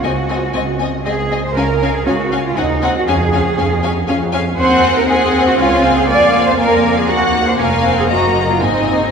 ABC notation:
X:1
M:3/4
L:1/16
Q:1/4=119
K:Db
V:1 name="Violin section"
a2 a2 a2 a2 a2 a2 | a2 a2 a2 a2 a2 a2 | a2 a2 a2 a2 a2 a2 | a4 a4 a4 |
a4 a4 g4 | a4 b4 a4 |]
V:2 name="Violin section"
e2 e2 e2 e2 e2 e2 | f2 f2 f2 f2 g2 g2 | f2 f2 f2 f2 f2 f2 | g4 g4 f4 |
f4 f4 g4 | f4 e4 e4 |]
V:3 name="Cello section"
G6 z2 A3 c | B3 A G3 F E3 G | A6 z6 | c3 B A3 G F3 A |
=d3 c B3 A G3 c | B3 A G3 F E4 |]
V:4 name="Viola section"
C2 C2 C2 C2 C2 C2 | D2 D2 D2 D2 C2 C2 | D2 D2 D2 D2 D2 D2 | C4 C4 D2 C2 |
B,4 B,4 B,4 | D2 C2 B,4 C4 |]
V:5 name="Double bass section" clef=bass
D,,4 D,,4 D,,4 | D,,4 D,,4 E,,4 | F,,4 F,,4 F,,4 | E,,8 D,,4 |
F,,8 E,,4 | F,,,4 G,,,4 A,,,4 |]